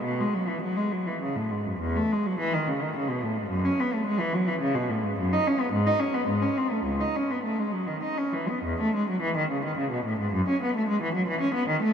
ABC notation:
X:1
M:3/4
L:1/16
Q:1/4=106
K:Bmix
V:1 name="Cello" clef=bass
B,, G, F, E, F, G, F, E, C, A,, G,, F,, | E,, A, G, F, E, D, C, D, C, B,, A,, G,, | F,, C B, A, G, E, F, E, C, B,, A,, G,, | [K:C#m] F,, D C B, G,, D C B, G,, C ^B, A, |
C,, D C B, A, G, F, D, D C E, B, | [K:E] E,, A, G, F, E, D, C, D, C, B,, A,, G,, | F,, C B, A, G, E, F, E, C B, D, A, |]